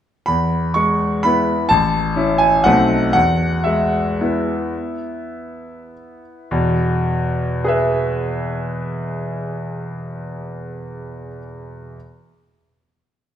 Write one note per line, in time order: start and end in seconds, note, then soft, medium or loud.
0.26 1.66 E2 soft
0.26 0.75 B5 medium
0.74 1.52 G#3 soft
0.74 1.23 C#6 medium
1.23 1.66 B3 soft
1.23 1.67 E4 soft
1.23 1.70 B5 medium
1.69 2.61 A1 medium
1.69 2.39 A5 medium
2.16 2.60 C#4 soft
2.16 2.61 E4 soft
2.38 2.63 G#5 medium
2.64 3.13 B1 medium
2.64 3.11 A3 soft
2.64 3.11 C4 soft
2.64 3.11 D#4 soft
2.64 3.12 F#5 medium
3.13 4.71 E2 soft
3.13 3.65 F#5 medium
3.64 4.54 G#3 soft
3.64 6.21 E5 medium
4.21 6.47 B3 soft
4.21 6.47 E4 soft
6.51 11.27 E2 medium
6.51 11.27 B2 medium
7.64 11.36 G#4 soft
7.64 11.37 B4 soft
7.64 11.38 E5 soft